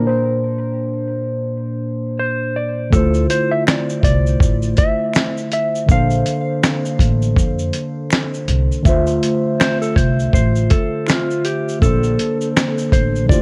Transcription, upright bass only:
0, 0, Header, 1, 2, 480
1, 0, Start_track
1, 0, Tempo, 740741
1, 1897, Time_signature, 4, 2, 24, 8
1, 8696, End_track
2, 0, Start_track
2, 0, Title_t, "Upright bass"
2, 0, Program_c, 0, 32
2, 1899, Note_on_c, 0, 38, 108
2, 2104, Note_off_c, 0, 38, 0
2, 2614, Note_on_c, 0, 36, 79
2, 2821, Note_off_c, 0, 36, 0
2, 2854, Note_on_c, 0, 33, 86
2, 3061, Note_off_c, 0, 33, 0
2, 3814, Note_on_c, 0, 34, 91
2, 4021, Note_off_c, 0, 34, 0
2, 4530, Note_on_c, 0, 33, 91
2, 4739, Note_off_c, 0, 33, 0
2, 4772, Note_on_c, 0, 41, 90
2, 4980, Note_off_c, 0, 41, 0
2, 5495, Note_on_c, 0, 36, 86
2, 5616, Note_off_c, 0, 36, 0
2, 5735, Note_on_c, 0, 38, 100
2, 5942, Note_off_c, 0, 38, 0
2, 6454, Note_on_c, 0, 36, 77
2, 6661, Note_off_c, 0, 36, 0
2, 6696, Note_on_c, 0, 33, 86
2, 6902, Note_off_c, 0, 33, 0
2, 7659, Note_on_c, 0, 34, 100
2, 7864, Note_off_c, 0, 34, 0
2, 8373, Note_on_c, 0, 33, 77
2, 8615, Note_off_c, 0, 33, 0
2, 8615, Note_on_c, 0, 38, 92
2, 8696, Note_off_c, 0, 38, 0
2, 8696, End_track
0, 0, End_of_file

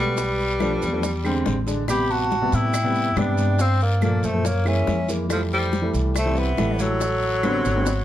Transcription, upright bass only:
0, 0, Header, 1, 2, 480
1, 0, Start_track
1, 0, Tempo, 427350
1, 198, Time_signature, 4, 2, 24, 8
1, 9036, End_track
2, 0, Start_track
2, 0, Title_t, "Upright bass"
2, 0, Program_c, 0, 32
2, 0, Note_on_c, 0, 35, 85
2, 848, Note_off_c, 0, 35, 0
2, 923, Note_on_c, 0, 40, 91
2, 1596, Note_off_c, 0, 40, 0
2, 1640, Note_on_c, 0, 33, 82
2, 2769, Note_off_c, 0, 33, 0
2, 2839, Note_on_c, 0, 45, 101
2, 3513, Note_off_c, 0, 45, 0
2, 3551, Note_on_c, 0, 43, 89
2, 4684, Note_off_c, 0, 43, 0
2, 4756, Note_on_c, 0, 42, 94
2, 5431, Note_off_c, 0, 42, 0
2, 5476, Note_on_c, 0, 41, 83
2, 6606, Note_off_c, 0, 41, 0
2, 6672, Note_on_c, 0, 36, 88
2, 7348, Note_off_c, 0, 36, 0
2, 7395, Note_on_c, 0, 33, 81
2, 8526, Note_off_c, 0, 33, 0
2, 8589, Note_on_c, 0, 32, 93
2, 9036, Note_off_c, 0, 32, 0
2, 9036, End_track
0, 0, End_of_file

